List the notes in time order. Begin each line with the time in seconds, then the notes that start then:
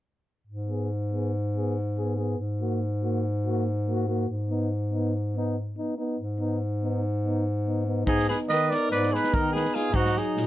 0.47 G#2
0.68 B3 G#4
1.12 B3 G#4
1.56 B3 G#4
1.98 B3 G#4
2.17 B3 G#4
2.38 G#2
2.61 A#3 F#4
3.03 A#3 F#4
3.46 A#3 F#4
3.87 A#3 F#4
4.08 A#3 F#4
4.29 G#2
4.50 B3 D#4
4.93 B3 D#4
5.36 B3 D#4
5.77 B3 D#4
5.98 B3 D#4
6.18 G#2
6.39 B3 D#4
6.83 B3 D#4
7.24 B3 D#4
7.67 B3 D#4
7.87 B3 D#4
8.06 G#2 B3 D#4 G#4, kick
8.20 snare
8.29 G#4 B4, snare
8.49 D#3 B4 D#5, snare
8.70 D5, snare
8.75 A#4
8.91 G#2 B4 D5, snare
9.03 snare
9.11 G#4 B4, snare
9.24 snare
9.32 D#3 D#4 A#4, kick
9.52 G#4 B4, snare
9.65 snare
9.75 F4 G#4, snare
9.92 G#2 F#3 D#4 F#4, kick
10.06 snare
10.16 D#4 G#4, snare
10.36 A#2, snare